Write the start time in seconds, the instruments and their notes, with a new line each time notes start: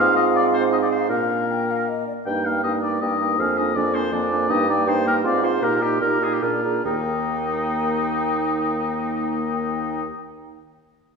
Already playing: bassoon G#2, french horn C4, oboe F5
0.00 clarinet F4, flute F5
0.16 oboe D#5
0.36 oboe D5
0.54 oboe C5
0.72 clarinet D#4, oboe D#5
0.82 oboe D5
0.91 oboe C5
1.09 bassoon A#2, french horn A#3, clarinet D4, oboe A#4, flute F5
1.50 flute G5
1.71 flute F5
1.89 flute D#5
2.07 flute D5
2.26 bassoon G2, french horn A#3, clarinet D#4, oboe G5, flute G5
2.45 french horn A#3, clarinet D#4, oboe F5, flute G5
2.63 bassoon G2, french horn A#3, clarinet D#4, oboe D#5, flute G5
2.83 french horn A#3, clarinet D#4, oboe D5, flute G5
3.01 bassoon G2, french horn A#3, clarinet D#4, oboe D#5, flute G5
3.19 french horn A#3, clarinet D#4, flute G5
3.39 bassoon F2, french horn A#3, clarinet D4, oboe F5, flute G#5
3.57 french horn A#3, clarinet D4, oboe D#5, flute G#5
3.76 bassoon F2, french horn A#3, clarinet D4, oboe D5, flute G#5
3.94 french horn A#3, clarinet D4, oboe C5, flute G#5
4.12 bassoon F2, french horn A#3, clarinet D4, oboe D5, flute G#5
4.31 french horn A#3, clarinet D4, flute G#5
4.49 bassoon G2, french horn A#3, clarinet D#4, oboe D#5, flute G5
4.67 french horn A#3, clarinet D#4, oboe D5, flute G5
4.86 bassoon G2, french horn A#3, clarinet D#4, oboe C5, flute G5
5.06 french horn A#3, clarinet D#4, oboe A#4, flute G5
5.23 bassoon G#2, french horn C4, clarinet F4, oboe D5, flute F5
5.43 french horn C4, clarinet F4, oboe C5, flute F5
5.62 bassoon A#2, french horn D#4, clarinet G4, oboe A#4, flute A#5
5.82 french horn D#4, oboe G4, clarinet G4, flute A#5
6.01 bassoon A#2, french horn D#4, clarinet G4, oboe A#4, flute A#5
6.21 french horn D#4, clarinet G4, oboe G#4, flute A#5
6.33 oboe G4
6.42 bassoon A#2, french horn D4, oboe F4, clarinet G#4, flute A#5
6.64 french horn D4, clarinet G#4, flute A#5
6.84 bassoon D#2, french horn A#3, clarinet D#4, oboe D#4, flute G5